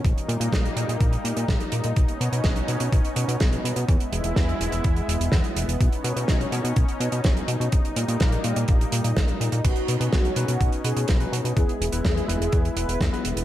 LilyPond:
<<
  \new Staff \with { instrumentName = "Analog polysynth" } { \time 4/4 \key b \major \tempo 4 = 125 r1 | r1 | r1 | r1 |
r1 | fis'8 r8 fis'8 r16 fis'8 r16 gis'8 r4 | gis'8 r8 gis'8 r16 gis'8 r16 b'8 r4 | }
  \new Staff \with { instrumentName = "Tine electric piano" } { \time 4/4 \key b \major r1 | r1 | r1 | r1 |
r1 | <cis' dis' fis' b'>16 r8 <cis' dis' fis' b'>8 r16 <cis' dis' fis' b'>16 r16 <cis' dis' fis' b'>8 <cis' dis' fis' b'>8. <cis' dis' fis' b'>16 r8 | <b e' gis' b'>16 r8 <b e' gis' b'>8 r16 <b e' gis' b'>16 r16 <b e' gis' b'>8 <b e' gis' b'>8. <b e' gis' b'>16 r8 | }
  \new Staff \with { instrumentName = "Analog synth pad" } { \time 4/4 \key b \major << { dis'1~ | dis'1 | e'1 | dis'1~ |
dis'1~ | dis'1 | e'1 | } \\ { <g ais>1 | <b cis'>1 | gis1 | cis'1 |
<g ais>1 | <b cis'>1 | gis1 | } >> }
  \new Staff \with { instrumentName = "Analog synth bass" } { \clef bass \time 4/4 \key b \major ais,,16 r16 ais,16 ais,16 ais,,16 r16 ais,16 ais,16 ais,,16 r16 ais,16 ais,16 ais,,16 r16 ais,16 ais,16 | b,,16 r16 b,16 b,16 b,,16 r16 b,16 b,16 b,,16 r16 b,16 b,16 b,,16 r16 b,16 b,16 | e,16 r16 e,,16 e,,16 e,16 r16 e,,16 e,,16 e,16 r16 e,,16 e,,16 e,16 r16 e,,16 e,,16 | b,,16 r16 b,16 b,16 b,,16 r16 b,16 b,16 b,,16 r16 b,16 b,16 b,,16 r16 b,16 b,16 |
ais,,16 r16 ais,16 ais,16 ais,,16 r16 ais,16 ais,16 ais,,16 r16 ais,16 ais,16 ais,,16 r16 ais,16 ais,16 | b,,16 r16 b,16 b,16 b,,16 r16 b,16 b,16 b,,16 r16 b,16 b,16 b,,16 r16 b,16 b,16 | e,16 r16 e,,16 e,,16 e,16 r16 e,,16 e,,16 e,16 r16 e,,16 e,,16 e,16 r16 e,,16 e,,16 | }
  \new DrumStaff \with { instrumentName = "Drums" } \drummode { \time 4/4 <hh bd>16 hh16 hh16 hh16 <hh bd sn>16 hh16 hh16 hh16 <hh bd>16 hh16 hh16 hh16 <hh bd sn>16 hh16 hh16 hh16 | <hh bd>16 hh16 hh16 hh16 <hh bd sn>16 hh16 hh16 hh16 <hh bd>16 hh16 hh16 hh16 <hh bd sn>16 hh16 hh16 hh16 | <hh bd>16 hh16 hh16 hh16 <hh bd sn>16 hh16 hh16 hh16 <hh bd>16 hh16 hh16 hh16 <hh bd sn>16 hh16 hh16 hh16 | <hh bd>16 hh16 hh16 hh16 <hh bd sn>16 hh16 hh16 hh16 <hh bd>16 hh16 hh16 hh16 <hh bd sn>16 hh16 hh16 hh16 |
<hh bd>16 hh16 hh16 hh16 <hh bd sn>16 hh16 hh16 hh16 <hh bd>16 hh16 hh16 hh16 <hh bd sn>16 hh16 hh16 hh16 | <cymc hh bd>16 hh16 hh16 hh16 <hh bd sn>16 hh16 hh16 hh16 <hh bd>16 hh16 hh16 hh16 <hh bd sn>16 hh16 hh16 hh16 | <hh bd>16 hh16 hh16 hh16 <hh bd sn>16 hh16 hh16 hh16 <hh bd>16 hh16 hh16 hh16 <hh bd sn>16 hh16 hh16 hh16 | }
>>